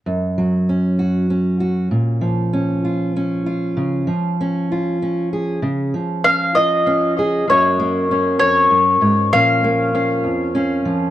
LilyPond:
<<
  \new Staff \with { instrumentName = "Mandolin" } { \time 6/8 \key ges \lydian \tempo 4. = 65 r2. | r2. | r2. | r4 f''8 ees''4 r8 |
des''4. des''4. | f''2 r4 | }
  \new Staff \with { instrumentName = "Steel-string acoustic guitar" } { \time 6/8 \key ges \lydian << { r4 des'8 ges'8 des'8 ges'8 | r4 des'8 f'8 des'8 f'8~ | f'4 des'8 f'8 des'8 aes'8 | r4 des'8 f'8 des'8 aes'8 |
<bes des' ges'>8 bes8 des'2 | <f bes des' f'>8 bes8 des'4 des'4 | } \\ { ges,8 ges2~ ges8 | bes,8 f2~ f8 | des8 f2~ f8 | des8 f2~ f8 |
ges,4. f,8 ges,8 aes,8 | bes,4. f,4 f8 | } >> }
>>